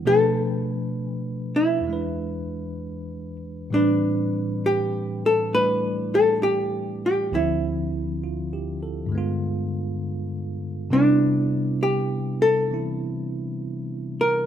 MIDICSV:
0, 0, Header, 1, 3, 480
1, 0, Start_track
1, 0, Tempo, 914634
1, 18, Time_signature, 4, 2, 24, 8
1, 2898, Tempo, 899550
1, 7669, End_track
2, 0, Start_track
2, 0, Title_t, "Hollow-body jazz guitar"
2, 0, Program_c, 0, 26
2, 38, Note_on_c, 0, 69, 90
2, 579, Note_off_c, 0, 69, 0
2, 579, Note_on_c, 0, 67, 90
2, 819, Note_on_c, 0, 64, 72
2, 843, Note_off_c, 0, 67, 0
2, 1763, Note_off_c, 0, 64, 0
2, 1963, Note_on_c, 0, 62, 62
2, 2445, Note_off_c, 0, 62, 0
2, 2446, Note_on_c, 0, 67, 86
2, 2759, Note_off_c, 0, 67, 0
2, 2761, Note_on_c, 0, 69, 78
2, 2910, Note_on_c, 0, 71, 95
2, 2912, Note_off_c, 0, 69, 0
2, 3233, Note_on_c, 0, 69, 79
2, 3234, Note_off_c, 0, 71, 0
2, 3382, Note_off_c, 0, 69, 0
2, 3384, Note_on_c, 0, 67, 80
2, 3710, Note_off_c, 0, 67, 0
2, 3719, Note_on_c, 0, 67, 64
2, 3872, Note_off_c, 0, 67, 0
2, 3873, Note_on_c, 0, 64, 57
2, 4644, Note_off_c, 0, 64, 0
2, 5784, Note_on_c, 0, 62, 62
2, 6262, Note_on_c, 0, 67, 81
2, 6272, Note_off_c, 0, 62, 0
2, 6576, Note_off_c, 0, 67, 0
2, 6578, Note_on_c, 0, 69, 86
2, 7534, Note_on_c, 0, 70, 82
2, 7568, Note_off_c, 0, 69, 0
2, 7669, Note_off_c, 0, 70, 0
2, 7669, End_track
3, 0, Start_track
3, 0, Title_t, "Tine electric piano"
3, 0, Program_c, 1, 4
3, 0, Control_c, 1, 64, 127
3, 26, Control_c, 1, 64, 0
3, 28, Note_on_c, 1, 47, 50
3, 29, Note_on_c, 1, 53, 47
3, 32, Note_on_c, 1, 57, 48
3, 35, Note_on_c, 1, 62, 45
3, 39, Note_on_c, 1, 71, 50
3, 112, Control_c, 1, 64, 127
3, 951, Note_on_c, 1, 40, 37
3, 966, Note_on_c, 1, 52, 39
3, 974, Note_off_c, 1, 47, 0
3, 974, Note_off_c, 1, 53, 0
3, 974, Control_c, 1, 64, 0
3, 975, Note_off_c, 1, 57, 0
3, 977, Note_off_c, 1, 62, 0
3, 979, Note_off_c, 1, 71, 0
3, 982, Note_on_c, 1, 56, 34
3, 997, Note_on_c, 1, 62, 35
3, 1011, Note_on_c, 1, 71, 47
3, 1069, Control_c, 1, 64, 127
3, 1931, Note_off_c, 1, 40, 0
3, 1939, Note_off_c, 1, 52, 0
3, 1944, Note_on_c, 1, 45, 48
3, 1946, Note_off_c, 1, 56, 0
3, 1947, Control_c, 1, 64, 0
3, 1951, Note_on_c, 1, 52, 41
3, 1954, Note_off_c, 1, 62, 0
3, 1955, Note_on_c, 1, 55, 49
3, 1960, Note_on_c, 1, 60, 42
3, 1961, Note_off_c, 1, 71, 0
3, 1966, Note_on_c, 1, 62, 43
3, 1972, Note_on_c, 1, 71, 56
3, 2023, Control_c, 1, 64, 127
3, 2895, Note_off_c, 1, 55, 0
3, 2901, Note_on_c, 1, 55, 38
3, 2903, Note_off_c, 1, 62, 0
3, 2903, Note_on_c, 1, 57, 35
3, 2910, Note_on_c, 1, 62, 31
3, 2915, Note_on_c, 1, 64, 33
3, 2919, Note_on_c, 1, 74, 38
3, 3856, Note_on_c, 1, 38, 48
3, 3859, Note_off_c, 1, 45, 0
3, 3859, Note_off_c, 1, 55, 0
3, 3860, Note_off_c, 1, 57, 0
3, 3863, Note_off_c, 1, 52, 0
3, 3863, Note_off_c, 1, 62, 0
3, 3864, Control_c, 1, 64, 0
3, 3864, Note_on_c, 1, 50, 52
3, 3866, Note_off_c, 1, 64, 0
3, 3867, Note_off_c, 1, 60, 0
3, 3868, Note_off_c, 1, 74, 0
3, 3870, Note_on_c, 1, 53, 47
3, 3873, Note_off_c, 1, 71, 0
3, 3876, Note_on_c, 1, 60, 48
3, 3887, Note_on_c, 1, 64, 61
3, 3957, Control_c, 1, 64, 127
3, 4346, Note_on_c, 1, 65, 38
3, 4504, Note_on_c, 1, 67, 37
3, 4640, Note_off_c, 1, 65, 0
3, 4661, Note_on_c, 1, 69, 40
3, 4749, Note_off_c, 1, 67, 0
3, 4788, Note_on_c, 1, 43, 50
3, 4796, Note_off_c, 1, 50, 0
3, 4802, Note_on_c, 1, 50, 41
3, 4816, Note_off_c, 1, 38, 0
3, 4818, Note_on_c, 1, 56, 43
3, 4824, Note_off_c, 1, 53, 0
3, 4824, Control_c, 1, 64, 0
3, 4827, Note_off_c, 1, 60, 0
3, 4832, Note_off_c, 1, 64, 0
3, 4834, Note_on_c, 1, 59, 45
3, 4848, Note_on_c, 1, 65, 60
3, 4907, Note_off_c, 1, 69, 0
3, 4916, Control_c, 1, 64, 127
3, 5759, Note_off_c, 1, 43, 0
3, 5766, Note_off_c, 1, 50, 0
3, 5770, Note_on_c, 1, 48, 59
3, 5774, Note_off_c, 1, 56, 0
3, 5775, Note_off_c, 1, 59, 0
3, 5777, Note_on_c, 1, 55, 50
3, 5781, Control_c, 1, 64, 0
3, 5781, Note_on_c, 1, 59, 53
3, 5788, Note_on_c, 1, 62, 54
3, 5790, Note_off_c, 1, 65, 0
3, 5797, Note_on_c, 1, 64, 66
3, 5864, Control_c, 1, 64, 127
3, 6732, Note_on_c, 1, 52, 35
3, 6741, Note_on_c, 1, 60, 33
3, 6742, Note_off_c, 1, 64, 0
3, 6748, Note_on_c, 1, 64, 46
3, 7669, Note_off_c, 1, 48, 0
3, 7669, Note_off_c, 1, 52, 0
3, 7669, Note_off_c, 1, 55, 0
3, 7669, Note_off_c, 1, 59, 0
3, 7669, Note_off_c, 1, 60, 0
3, 7669, Note_off_c, 1, 62, 0
3, 7669, Note_off_c, 1, 64, 0
3, 7669, End_track
0, 0, End_of_file